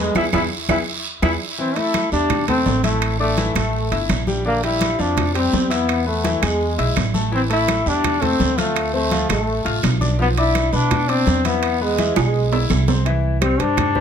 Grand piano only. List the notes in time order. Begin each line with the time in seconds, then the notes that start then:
Already playing: G#3 G#4 B4
0.15 E4 G#4 B4
0.33 E4 G#4 B4
0.69 E4 G#4 B4
1.22 E4 G#4 B4
1.58 E3 E4 E5
1.76 A3 A4 A5
2.12 G3 G4 G5
2.48 A3 A4 A5
2.84 E4 E5 E6
3.20 D4 D5 D6
3.37 E3 E4 E5
3.55 A3 A4 A5
3.91 E4 E5 E6
4.27 G3 G4 G5
4.45 D3 D4 D5
4.63 G3 G4 G5
4.98 F3 F4 F5
5.34 G3 G4 G5
5.70 E4 E5 E6
6.06 B3 B4 B5
6.24 E3 E4 E5
6.42 G#3 G#4 G#5
6.78 E4 E5 E6
7.14 A3 A4 A5
7.32 E3 E4 E5
7.50 A3 A4 A5
7.86 G3 G4 G5
8.21 A3 A4 A5
8.57 F4 F5 F6
8.93 C4 C5 C6
9.12 F3 F4 F5
9.30 A3 A4 A5
9.65 F4 F5 F6
10.01 D4 D5 D6
10.19 F3 F4 F5
10.37 D4 D5 D6
10.73 B3 B4 B5
11.09 D4 D5 D6
11.45 E4 E5 E6
11.81 B3 B4 B5
11.99 E3 E4 E5
12.17 G#3 G#4 G#5
12.52 E4 E5 E6
12.88 C4 C5 C6
13.05 E3 E4 E5
13.41 G3 G4 C5
13.58 G3 G4 C5
13.95 G3 G4 C5